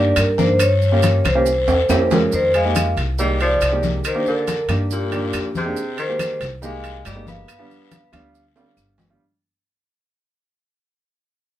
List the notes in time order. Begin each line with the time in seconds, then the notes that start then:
Already playing: G2 A#3 D4 D#4 G4 D5
0.16 G2 A#4, high conga, high timbale, short guiro, claves, maracas
0.38 A#3 D4 D#4 A#4 C5, high conga, short guiro, maracas
0.59 C#5, high conga, high timbale, long guiro, claves, maracas
0.82 high conga, maracas
0.92 A#3 C#4 F4 G4
1.02 C#5, high conga, high timbale, short guiro, maracas
1.24 C2 C5, high conga, high timbale, short guiro, claves, maracas
1.35 A#3 C#4 F4 G4
1.46 high conga, long guiro, maracas
1.68 E2, high conga, high timbale, maracas
1.89 F2 A#3 C#4 E4 G4, high conga, high timbale, short guiro, claves, maracas
2.11 C#3 A#4, high conga, low timbale, short guiro, maracas
2.32 F2 D#3 C5, long guiro, maracas
2.54 G#3 F5, high conga, high timbale, maracas
2.65 G#3 A#3 D#4 G4
2.75 high conga, high timbale, short guiro, claves, maracas
2.97 C2, high timbale, short guiro, maracas
3.18 G3 G#3 A#3 D#4 G4 D#5, high conga, long guiro, maracas
3.40 F3 D5, high conga, high timbale, maracas
3.61 C2, high conga, high timbale, short guiro, claves, maracas
3.71 G#3 A#3 D#4 G4
3.83 high conga, short guiro, maracas
4.04 D#3 C5, high conga, high timbale, long guiro, claves, maracas
4.15 A#3 D4 D#4 G4
4.26 D3 A#4, high conga, maracas
4.47 high conga, high timbale, short guiro, maracas
4.68 G2 A#3 D4 D#4 G4, high conga, high timbale, short guiro, claves, maracas
4.91 A#2 G4, high conga, long guiro, maracas
5.12 A#3 D4 D#4 G4, high conga, high timbale, maracas
5.33 F2, high conga, high timbale, short guiro, claves, maracas
5.55 C3 G#4, high conga, short guiro, maracas
5.65 A#3 D4 D#4 G4
5.77 high conga, long guiro, maracas
5.98 D#3 C5, high conga, high timbale, maracas
6.08 G#3 A#3 D#4 G4
6.19 high conga, high timbale, short guiro, claves, maracas
6.40 C2, high timbale, short guiro, maracas
6.62 G#3 A#3 D#4 G4 F5, high conga, long guiro, maracas
6.84 high conga, high timbale, maracas
7.05 G1 G3 D#5, high conga, high timbale, low timbale, short guiro, claves, maracas
7.15 G#3 A#3 D#4 G4
7.27 B3 F5, high conga, short guiro, maracas
7.48 high conga, high timbale, long guiro, claves, maracas
7.59 G3 B3 D4 F4
7.70 high conga, maracas
7.91 high conga, high timbale, short guiro, maracas
8.12 D2 G3 B3 D4 F4, high conga, high timbale, short guiro, claves, maracas
8.34 high conga, long guiro, maracas
8.56 G3 B3 D4 F4, high conga, high timbale, maracas
8.77 G1, high conga, short guiro, claves, maracas
8.98 high conga, low timbale, short guiro, maracas
9.09 G3 B3 D4 F4